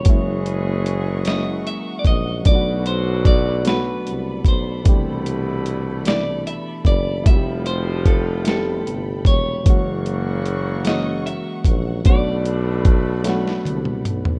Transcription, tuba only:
0.07 1.75 F#1 loud
2.05 2.42 A#1 loud
2.46 4.02 B1 loud
4.08 4.43 C2 medium
4.46 4.82 B1 medium
4.87 6.55 C2 loud
6.86 7.22 F#1 loud
7.27 8.82 F1 loud
8.87 9.23 G1 medium
9.26 9.62 E1 loud
9.67 11.35 F#1 loud
11.65 12.02 A#1 loud
12.07 13.62 B1 loud
13.68 14.03 C2 medium
14.07 14.39 B1 medium

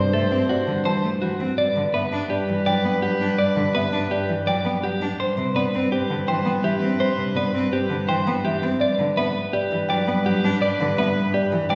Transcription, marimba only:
0.14 0.37 E5 medium
0.50 0.73 D5 medium
0.86 1.09 A5 medium
1.22 1.45 F#5 medium
1.58 1.81 D5 medium
1.94 2.18 E5 medium
2.30 2.54 D5 medium
2.67 2.90 G5 medium
3.02 3.26 F#5 medium
3.39 3.62 D5 medium
3.76 3.99 E5 medium
4.12 4.35 D5 medium
4.48 4.71 G5 medium
4.84 5.07 F#5 medium
5.20 5.43 C5 medium
5.55 5.79 D5 medium
5.91 6.15 C5 medium
6.28 6.51 G5 medium
6.64 6.87 E5 medium
7.01 7.24 C5 medium
7.36 7.60 D5 medium
7.72 7.96 C5 medium
8.09 8.32 G5 medium
8.45 8.68 E5 medium
8.80 9.04 D5 medium
9.17 9.40 E5 medium
9.53 9.77 D5 medium
9.89 10.12 G5 medium
10.25 10.49 F#5 medium
10.61 10.85 D5 medium
10.98 11.21 E5 medium
11.34 11.57 D5 medium
11.69 11.75 G5 loud

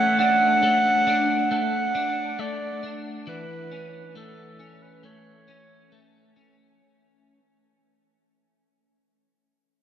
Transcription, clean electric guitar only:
0.00 0.62 A3 medium
0.19 1.06 D4 medium
0.63 1.51 A3 medium
1.07 1.94 D4 medium
1.51 2.38 A3 medium
1.95 2.82 D4 medium
2.39 4.15 A3 medium
2.83 3.36 D4 medium
3.27 6.80 E3 medium
3.71 4.59 C#4 medium
4.15 5.03 A3 medium
4.60 5.47 C#4 medium
5.03 5.92 A3 medium
5.48 6.36 C#4 medium
5.92 7.39 A3 medium
6.36 7.39 C#4 medium

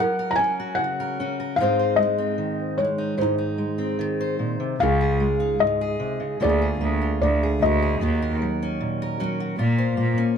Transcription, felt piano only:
0.00 1.55 A#4 medium
0.00 0.31 F#5 medium
0.31 0.38 A#5 medium
0.36 0.78 G#5 medium
0.75 1.59 F#5 medium
1.56 1.98 F5 medium
1.61 3.16 C5 medium
1.96 2.80 D#5 medium
2.78 3.19 C#5 medium
3.18 3.95 C5 soft
3.22 4.78 D#4 soft
4.80 6.39 G#4 medium
4.80 5.63 F5 medium
5.60 6.43 D#5 medium
6.42 7.98 G#4 soft
6.42 7.20 D5 medium
7.21 7.62 D5 medium
7.62 9.17 F#4 soft
7.62 9.17 D#5 medium

